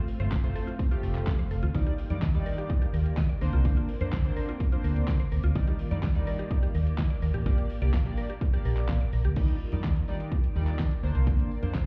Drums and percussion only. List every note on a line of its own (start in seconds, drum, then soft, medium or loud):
0.08 open hi-hat medium
0.08 tambourine soft
0.20 closed hi-hat medium
0.32 kick loud
0.32 snare medium
0.32 clap loud
0.32 closed hi-hat medium
0.32 tambourine medium
0.44 closed hi-hat medium
0.55 open hi-hat medium
0.55 tambourine medium
0.68 closed hi-hat medium
0.79 kick loud
0.79 closed hi-hat medium
0.79 tambourine soft
0.92 closed hi-hat medium
1.03 open hi-hat medium
1.03 tambourine medium
1.15 clap medium
1.15 closed hi-hat medium
1.27 kick loud
1.27 snare medium
1.27 clap loud
1.27 closed hi-hat medium
1.27 tambourine medium
1.39 closed hi-hat medium
1.51 open hi-hat medium
1.51 tambourine medium
1.63 closed hi-hat medium
1.75 kick loud
1.75 closed hi-hat medium
1.75 tambourine medium
1.87 closed hi-hat medium
1.98 open hi-hat medium
1.98 tambourine soft
2.10 closed hi-hat medium
2.22 kick loud
2.22 snare medium
2.22 clap loud
2.22 closed hi-hat medium
2.22 tambourine medium
2.34 closed hi-hat medium
2.46 open hi-hat medium
2.46 tambourine medium
2.58 closed hi-hat medium
2.70 kick loud
2.70 closed hi-hat medium
2.82 closed hi-hat medium
2.94 open hi-hat medium
2.94 tambourine medium
3.06 closed hi-hat medium
3.17 kick loud
3.17 snare medium
3.17 clap loud
3.17 closed hi-hat medium
3.17 tambourine medium
3.29 closed hi-hat medium
3.41 open hi-hat medium
3.41 tambourine medium
3.53 closed hi-hat medium
3.65 kick loud
3.65 closed hi-hat medium
3.65 tambourine medium
3.77 closed hi-hat medium
3.89 open hi-hat medium
4.01 closed hi-hat medium
4.13 kick loud
4.13 snare medium
4.13 clap loud
4.13 closed hi-hat medium
4.13 tambourine medium
4.25 closed hi-hat medium
4.36 open hi-hat medium
4.36 tambourine medium
4.49 closed hi-hat medium
4.60 kick loud
4.60 closed hi-hat medium
4.60 tambourine soft
4.72 closed hi-hat medium
4.84 open hi-hat medium
4.84 tambourine medium
4.96 closed hi-hat medium
5.08 kick loud
5.08 snare medium
5.08 clap loud
5.08 closed hi-hat medium
5.08 tambourine medium
5.20 closed hi-hat medium
5.32 open hi-hat medium
5.32 tambourine medium
5.43 closed hi-hat medium
5.55 kick loud
5.55 closed hi-hat medium
5.55 tambourine medium
5.67 closed hi-hat medium
5.79 open hi-hat medium
5.91 closed hi-hat medium
6.03 kick loud
6.03 snare medium
6.03 clap loud
6.03 closed hi-hat medium
6.03 tambourine medium
6.15 closed hi-hat medium
6.27 open hi-hat medium
6.27 tambourine medium
6.39 closed hi-hat medium
6.51 kick loud
6.51 closed hi-hat medium
6.63 closed hi-hat medium
6.75 open hi-hat medium
6.75 tambourine medium
6.87 closed hi-hat medium
6.98 kick loud
6.98 snare loud
6.98 clap loud
6.98 closed hi-hat medium
6.98 tambourine medium
7.10 closed hi-hat medium
7.22 open hi-hat medium
7.22 tambourine medium
7.34 closed hi-hat medium
7.46 kick loud
7.46 closed hi-hat medium
7.46 tambourine medium
7.58 closed hi-hat medium
7.69 open hi-hat medium
7.69 tambourine soft
7.82 closed hi-hat medium
7.93 kick loud
7.93 snare medium
7.93 clap loud
7.93 closed hi-hat medium
7.93 tambourine medium
8.06 closed hi-hat medium
8.17 open hi-hat medium
8.17 tambourine medium
8.30 closed hi-hat medium
8.41 kick loud
8.41 closed hi-hat medium
8.54 closed hi-hat medium
8.65 open hi-hat medium
8.65 tambourine medium
8.77 clap medium
8.77 closed hi-hat medium
8.89 kick loud
8.89 snare medium
8.89 clap loud
8.89 closed hi-hat medium
8.89 tambourine medium
9.01 closed hi-hat medium
9.13 open hi-hat medium
9.13 tambourine medium
9.24 closed hi-hat medium
9.36 kick loud
9.36 closed hi-hat medium
9.36 crash medium
9.36 tambourine medium
9.48 closed hi-hat medium
9.72 closed hi-hat medium
9.84 kick loud
9.84 snare medium
9.84 clap loud
9.84 closed hi-hat medium
9.84 tambourine medium
9.96 closed hi-hat medium
10.08 tambourine medium
10.20 closed hi-hat medium
10.32 kick loud
10.32 closed hi-hat medium
10.44 closed hi-hat medium
10.56 tambourine medium
10.67 clap medium
10.67 closed hi-hat medium
10.79 kick loud
10.79 snare medium
10.79 clap loud
10.79 closed hi-hat medium
10.79 tambourine medium
10.91 closed hi-hat medium
11.03 tambourine medium
11.15 closed hi-hat medium
11.27 kick loud
11.27 closed hi-hat medium
11.27 tambourine medium
11.39 closed hi-hat medium
11.51 tambourine soft
11.63 closed hi-hat medium
11.75 kick loud
11.75 snare medium
11.75 clap loud
11.75 closed hi-hat medium
11.75 tambourine medium